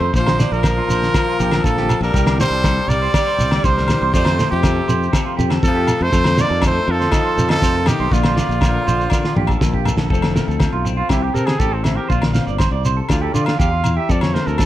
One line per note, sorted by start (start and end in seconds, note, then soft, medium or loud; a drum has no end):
0.00 0.13 F2 medium
0.00 0.10 F2 medium
0.00 0.10 C3 medium
0.00 0.11 F3 medium
0.00 0.10 A3 medium
0.00 0.12 A3 medium
0.00 0.10 D#4 medium
0.00 0.11 A4 medium
0.00 0.12 C5 medium
0.00 0.13 C5 medium
0.13 0.42 A#1 loud
0.13 1.39 A#2 medium
0.13 0.54 C5 medium
0.13 muted clean electric guitar stroke medium
0.13 kick medium
0.13 shekere medium
0.18 0.53 F3 medium
0.26 0.38 C5 medium
0.26 snare medium
0.26 low agogo medium
0.39 2.11 D4 medium
0.39 0.63 D5 medium
0.39 snare medium
0.39 shekere loud
0.52 0.80 A#1 medium
0.52 1.65 F3 medium
0.52 1.66 A#4 loud
0.52 shekere soft
0.63 2.11 F3 medium
0.63 0.76 A#4 medium
0.63 kick medium
0.63 snare medium
0.63 low agogo medium
0.63 shekere medium
0.77 0.89 F4 medium
0.88 1.07 A#1 medium
0.88 1.13 C5 medium
0.88 shekere loud
1.03 snare soft
1.03 shekere soft
1.14 2.14 F4 medium
1.14 1.26 A#4 medium
1.14 kick medium
1.14 snare medium
1.14 low agogo medium
1.14 shekere medium
1.27 1.39 F4 medium
1.40 1.58 A#1 medium
1.40 2.14 F2 medium
1.40 1.51 G4 medium
1.40 shekere medium
1.51 1.75 A4 medium
1.51 snare medium
1.51 low agogo medium
1.51 shekere soft
1.64 1.92 A#1 medium
1.64 2.02 F3 medium
1.64 2.01 A4 medium
1.64 kick loud
1.64 shekere medium
1.77 1.89 G4 medium
1.77 snare soft
1.89 2.01 A4 medium
1.89 low agogo medium
1.89 shekere loud
2.01 2.10 A#1 medium
2.01 2.37 G3 medium
2.01 2.14 A4 medium
2.01 2.37 A#4 medium
2.01 shekere soft
2.14 2.42 C2 loud
2.14 3.39 C3 medium
2.14 2.38 G4 medium
2.14 kick medium
2.14 shekere medium
2.27 snare medium
2.27 low agogo medium
2.39 2.92 G3 medium
2.39 4.11 D4 medium
2.39 2.51 A#4 medium
2.39 2.90 C5 loud
2.39 snare medium
2.39 shekere medium
2.50 2.79 C2 medium
2.50 2.63 A4 medium
2.64 3.88 G3 medium
2.64 2.88 A4 medium
2.64 kick medium
2.64 snare medium
2.64 low agogo medium
2.64 shekere medium
2.88 3.07 C2 medium
2.88 3.65 G3 medium
2.88 3.01 A#4 medium
2.88 3.66 D5 loud
2.88 shekere loud
3.02 3.13 C5 medium
3.02 shekere soft
3.14 4.11 G4 medium
3.14 3.26 D5 medium
3.14 kick medium
3.14 snare medium
3.14 low agogo medium
3.14 shekere medium
3.27 3.50 C5 medium
3.38 3.57 C2 medium
3.38 4.11 G2 medium
3.38 shekere loud
3.51 3.64 D5 medium
3.51 snare medium
3.51 low agogo medium
3.64 3.92 C2 medium
3.64 3.89 D3 medium
3.64 4.14 G3 medium
3.64 3.76 C5 medium
3.64 4.14 C5 medium
3.64 kick loud
3.64 shekere medium
3.78 4.00 A#4 medium
3.78 snare soft
3.88 4.13 E3 medium
3.88 snare medium
3.88 low agogo medium
3.88 shekere medium
4.02 4.11 C2 medium
4.02 4.13 C5 medium
4.13 6.13 F2 medium
4.13 4.42 F2 loud
4.13 4.63 F3 medium
4.13 5.64 A3 medium
4.13 4.49 A3 medium
4.13 6.11 G4 medium
4.13 4.49 C5 loud
4.13 4.26 D5 medium
4.13 muted clean electric guitar stroke medium
4.13 kick medium
4.13 shekere medium
4.25 4.38 C5 medium
4.25 snare medium
4.25 low agogo medium
4.39 5.13 C4 medium
4.39 4.62 C5 medium
4.39 snare medium
4.39 shekere medium
4.51 4.80 F2 medium
4.51 5.33 C3 medium
4.51 5.32 G4 medium
4.63 6.43 F3 medium
4.63 4.74 A4 medium
4.63 kick medium
4.63 snare medium
4.63 low agogo medium
4.63 shekere medium
4.76 4.87 A4 medium
4.88 5.07 F2 medium
4.88 5.12 C5 medium
4.88 shekere loud
5.03 shekere soft
5.13 6.38 C4 medium
5.13 5.25 A4 medium
5.13 kick medium
5.13 snare medium
5.13 low agogo medium
5.13 shekere medium
5.25 5.37 F4 medium
5.37 5.57 F2 loud
5.37 6.11 C3 medium
5.37 5.49 G4 medium
5.37 shekere medium
5.50 5.74 A4 medium
5.50 snare medium
5.50 low agogo medium
5.63 5.91 F2 medium
5.63 6.11 A3 medium
5.63 6.04 A4 loud
5.63 kick loud
5.63 shekere medium
5.67 6.05 F3 medium
5.75 5.87 G4 medium
5.87 5.99 A4 medium
5.87 low agogo medium
5.87 shekere loud
6.00 6.10 F2 medium
6.00 6.43 A3 loud
6.00 6.12 A4 medium
6.00 6.42 C5 loud
6.13 6.41 F2 loud
6.13 8.13 F2 medium
6.13 6.36 A4 medium
6.13 kick medium
6.13 shekere medium
6.24 snare medium
6.24 low agogo medium
6.37 6.64 A#3 medium
6.37 7.12 D#4 medium
6.37 6.49 C5 medium
6.37 6.64 D5 loud
6.37 snare medium
6.37 shekere medium
6.49 6.78 F2 medium
6.49 6.60 A4 medium
6.61 8.11 F3 medium
6.61 6.85 A4 medium
6.61 kick medium
6.61 snare medium
6.61 low agogo medium
6.61 shekere medium
6.66 6.92 A3 medium
6.66 6.92 C5 loud
6.87 7.06 F2 medium
6.87 7.51 F3 medium
6.87 7.50 A4 loud
6.87 6.99 A#4 medium
7.00 7.11 C5 medium
7.00 snare soft
7.00 shekere soft
7.12 8.09 D#4 medium
7.12 7.24 D#5 medium
7.12 kick medium
7.12 snare medium
7.12 low agogo medium
7.12 shekere medium
7.24 7.48 C5 medium
7.37 7.56 F2 medium
7.37 8.09 C3 medium
7.37 shekere medium
7.49 7.90 F3 medium
7.49 7.89 A4 loud
7.49 7.62 D#5 medium
7.49 snare medium
7.49 low agogo medium
7.62 7.91 F2 loud
7.62 8.10 A3 medium
7.62 7.74 C5 medium
7.62 kick medium
7.62 shekere medium
7.75 7.99 A#4 medium
7.86 8.15 D#3 medium
7.86 8.14 G4 medium
7.86 snare medium
7.86 low agogo medium
7.86 shekere loud
8.00 8.09 B1 medium
8.00 8.11 C5 medium
8.11 8.40 A#1 loud
8.11 9.36 A#2 medium
8.11 9.87 D3 medium
8.11 8.62 F3 medium
8.11 8.36 D4 medium
8.11 9.87 F4 medium
8.11 8.24 D5 medium
8.11 muted clean electric guitar stroke medium
8.11 kick medium
8.11 shekere medium
8.23 8.37 C5 medium
8.23 snare medium
8.23 low agogo medium
8.37 9.10 D4 medium
8.37 8.61 D5 medium
8.37 snare medium
8.37 shekere medium
8.49 8.77 A#1 medium
8.49 shekere soft
8.61 10.08 F3 medium
8.61 8.73 A#4 medium
8.61 kick medium
8.61 snare medium
8.61 low agogo medium
8.61 shekere medium
8.74 8.86 A#4 medium
8.87 9.06 A#1 medium
8.87 9.10 C5 medium
8.87 shekere loud
9.01 shekere soft
9.10 10.08 D4 medium
9.10 9.23 A#4 medium
9.10 kick medium
9.10 snare soft
9.10 low agogo medium
9.10 shekere medium
9.25 9.36 F4 medium
9.25 snare soft
9.36 9.55 A#1 medium
9.36 10.08 F2 medium
9.36 9.48 G4 medium
9.36 mid tom medium
9.47 9.72 A4 medium
9.47 kick medium
9.47 low agogo medium
9.47 shekere soft
9.61 9.90 A#1 medium
9.61 10.08 A#3 medium
9.61 kick loud
9.61 snare medium
9.61 shekere medium
9.74 9.86 G4 medium
9.74 kick medium
9.85 9.96 A4 medium
9.85 floor tom medium
9.85 low agogo medium
9.85 shekere medium
9.97 10.07 A#1 medium
9.97 10.09 A4 medium
9.97 snare medium
10.01 shekere soft
10.09 10.39 F1 medium
10.09 11.10 F2 medium
10.09 10.58 F3 medium
10.09 10.33 A3 medium
10.09 10.84 C4 medium
10.09 10.34 A4 medium
10.09 11.08 A4 medium
10.09 kick medium
10.14 shekere medium
10.22 snare medium
10.22 low agogo medium
10.35 11.07 A3 medium
10.35 10.48 A#4 medium
10.35 snare medium
10.35 shekere medium
10.48 10.67 D2 medium
10.48 10.72 A4 medium
10.48 shekere soft
10.59 11.07 F3 medium
10.59 kick medium
10.59 snare medium
10.59 low agogo medium
10.59 shekere medium
10.73 11.01 B1 medium
10.73 10.85 F4 medium
10.85 11.10 C4 medium
10.85 muted clean electric guitar stroke medium
10.85 shekere medium
10.97 11.09 F4 medium
10.97 11.12 F4 medium
11.09 11.29 C2 loud
11.09 11.60 C3 medium
11.09 11.34 C4 medium
11.09 11.24 E4 medium
11.09 11.34 G4 medium
11.09 kick medium
11.09 snare medium
11.09 low agogo medium
11.09 shekere medium
11.23 11.36 G4 medium
11.34 11.54 C3 medium
11.34 11.84 C4 medium
11.34 11.59 A4 medium
11.34 11.48 A#4 medium
11.34 shekere medium
11.46 11.61 G#4 medium
11.46 snare medium
11.46 low agogo medium
11.59 11.97 A1 medium
11.59 12.07 E3 medium
11.59 11.72 G4 medium
11.59 11.75 A4 medium
11.59 kick medium
11.59 shekere medium
11.72 11.86 C4 medium
11.72 11.96 A4 medium
11.84 12.07 C4 medium
11.84 11.98 E4 medium
11.84 snare medium
11.84 low agogo medium
11.84 shekere medium
11.96 12.09 G4 medium
11.96 12.08 A#4 medium
12.08 12.39 A#1 loud
12.08 12.58 A#2 medium
12.08 13.07 D4 medium
12.08 12.25 F4 medium
12.08 12.21 C5 medium
12.08 kick medium
12.08 shekere medium
12.21 12.33 A#4 medium
12.21 snare medium
12.21 low agogo medium
12.33 13.07 C4 medium
12.33 12.46 F5 medium
12.33 snare medium
12.33 shekere medium
12.47 12.66 G1 medium
12.47 12.59 D5 medium
12.47 shekere soft
12.59 12.71 C5 medium
12.59 muted clean electric guitar stroke medium
12.59 kick medium
12.59 snare medium
12.59 low agogo medium
12.59 shekere medium
12.71 13.00 C2 medium
12.71 12.84 D5 medium
12.85 13.08 C3 medium
12.85 12.97 C5 medium
12.85 shekere loud
12.97 13.21 A4 medium
13.09 13.29 D2 loud
13.09 13.58 D3 medium
13.09 13.83 F3 medium
13.09 13.33 A3 medium
13.09 14.07 D4 medium
13.09 13.24 F4 medium
13.09 kick medium
13.09 snare medium
13.09 low agogo medium
13.09 shekere medium
13.21 13.34 G4 medium
13.21 13.35 A4 medium
13.34 13.53 D3 medium
13.34 13.46 F4 medium
13.34 13.47 D5 medium
13.34 muted clean electric guitar stroke medium
13.34 shekere medium
13.45 13.59 F4 medium
13.45 13.59 F5 medium
13.45 snare medium
13.45 low agogo medium
13.59 13.97 E2 loud
13.59 13.84 D3 medium
13.59 13.71 G4 medium
13.59 13.98 F5 medium
13.59 kick medium
13.59 shekere medium
13.71 13.95 F4 medium
13.83 14.09 E3 medium
13.83 low agogo medium
13.83 shekere loud
13.97 14.09 G4 medium
13.97 14.12 E5 medium
14.08 14.66 F2 medium
14.08 14.37 F2 loud
14.08 14.66 C4 medium
14.08 14.33 A4 medium
14.08 14.23 D5 medium
14.08 kick medium
14.08 shekere medium
14.21 14.35 C#5 medium
14.21 snare medium
14.21 low agogo medium
14.34 14.66 A3 medium
14.34 14.46 A#4 medium
14.34 14.48 C5 medium
14.34 snare medium
14.46 14.66 D2 medium
14.46 14.66 A4 medium
14.46 14.60 A#4 medium
14.46 shekere soft
14.58 14.66 F3 medium
14.58 14.66 A4 medium
14.58 kick medium
14.58 snare medium
14.58 low agogo medium
14.58 shekere medium